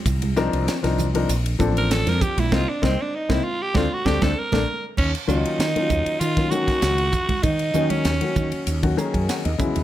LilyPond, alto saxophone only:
\new Staff \with { instrumentName = "Alto saxophone" } { \time 4/4 \key c \dorian \tempo 4 = 98 r2 r8. bes'16 a'16 bes'16 g'16 e'16 | f'16 d'16 c'16 d'16 ees'16 e'16 f'16 g'16 f'16 fis'16 g'16 a'16 bes'8. r16 | \key ees \minor des'8 ees'4. f'8 ges'4. | ees'8. des'4. r4. r16 | }